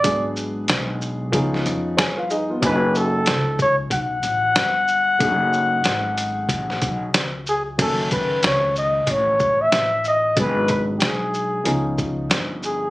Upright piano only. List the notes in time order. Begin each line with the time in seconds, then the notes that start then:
0.03 F#3 G#3 A3 D4 G#4
1.32 F3 B3 C#4 D#4 G#4
1.97 G#4 C#5 G#5
2.17 F4 B4 F5
2.31 D#4 G#4 D#5
2.50 B3 F4
2.61 F#3 A3 C#4 D#4 G#5
5.19 F#3 A3 C#4 D#4 G#4
7.78 D#3 F#3 A3 C#4 G#5
10.36 F#3 G#3 B3 D4 G#4
11.64 F3 B3 C#4 D#4 G#4